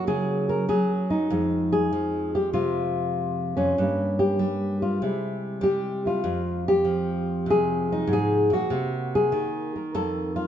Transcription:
Already playing: F#2 F#3 A#3 E4
0.07 C#3 G#4
0.49 A#4
0.69 F#3 G#4
1.10 D#4
1.30 F2 F3 G#3
1.72 G#4
1.93 F3
2.35 G4
2.53 C3 F4
3.57 F2 C#4
3.78 G2 G3 A#3
4.19 G4
4.39 G3
4.82 F4
5.02 C3 G3 G#3 E4
5.61 G3 G4
6.05 E4 F4
6.24 F2
6.68 G4
6.85 F3
7.46 C3
7.50 G#4
7.92 D#4
8.07 G#2
8.13 G#4
8.50 A#2 F#4
8.70 C3 A#3
9.15 G#4
9.32 D#3
9.76 A#4
9.95 F2 A4
10.36 F4

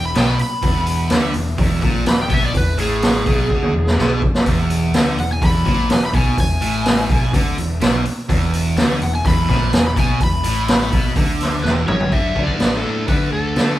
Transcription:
Already playing: E1 E2
0.05 B5
0.15 B1 B2 G5, snare, open hi-hat
0.30 B5
0.39 B5, muted picked electric bass stroke, muted distorted electric guitar stroke, open hi-hat
0.62 E1 E2, kick, open hi-hat
0.86 open hi-hat
1.10 D2 D3, snare, open hi-hat
1.34 E1 E2, open hi-hat
1.58 E1 E2, kick, open hi-hat
1.82 A#1 A#2, kick, open hi-hat
2.05 E1 E2 B5, snare, open hi-hat
2.22 G5
2.29 B1 B2, kick, open hi-hat
2.34 E5
2.46 D5
2.53 E1 E2, kick, open hi-hat
2.57 B4
2.77 A1 A2 G#4, open hi-hat
3.02 snare, open hi-hat
3.26 B1 B2, kick, open hi-hat
3.49 D2 D3, kick
3.62 high tom
3.73 E1 E2
3.87 snare
3.97 B1 B2, snare
4.22 muted picked electric bass stroke, muted distorted electric guitar stroke, kick
4.35 snare
4.46 E1 E2, kick, open hi-hat
4.70 open hi-hat
4.92 D2 D3, snare, open hi-hat
5.17 E1 E2 F#5, open hi-hat
5.33 G#5
5.42 E1 E2 B5, kick, open hi-hat
5.65 A#1 A#2, kick, open hi-hat
5.89 E1 E2, snare, open hi-hat
5.93 G#5
6.06 B5
6.14 B1 B2 G#5, kick, open hi-hat
6.37 E1 E2 G#5, kick, open hi-hat
6.61 A1 A2, open hi-hat
6.85 snare, open hi-hat
7.09 B1 B2, kick, open hi-hat
7.33 D2 D3, kick, open hi-hat
7.57 E1 E2, open hi-hat
7.81 B1 B2, snare, open hi-hat
8.05 muted picked electric bass stroke, muted distorted electric guitar stroke, open hi-hat
8.29 E1 E2, kick, open hi-hat
8.53 open hi-hat
8.76 D2 D3, snare, open hi-hat
9.00 E1 E2 F#5, open hi-hat
9.16 G#5
9.25 E1 E2 B5, kick, open hi-hat
9.47 A#1 A#2, kick, snare, open hi-hat
9.72 E1 E2 G#5, snare, open hi-hat
9.87 B5
9.96 B1 B2 G#5, kick, open hi-hat
10.20 E1 E2 B5, kick, open hi-hat
10.43 A1 A2, open hi-hat
10.68 snare, open hi-hat
10.91 B1 B2, kick, open hi-hat
11.15 D2 D3, kick, open hi-hat
11.40 snare, open hi-hat
11.63 E1 E2 B4, snare
11.87 G1 G2 C#5, mid tom
12.00 floor tom
12.11 D2 D3 A3 D4 E5, kick, open hi-hat
12.35 D2 D3 A3 D4, kick
12.43 D5
12.48 kick
12.59 A1 D3 A3 D4, snare, open hi-hat
12.77 A4
12.84 A2 D3 A3 D4
13.07 D3 A3 D4 B4, kick, open hi-hat
13.31 D2 D3 A3 D4 A4
13.56 D3 A3 D4, snare, open hi-hat

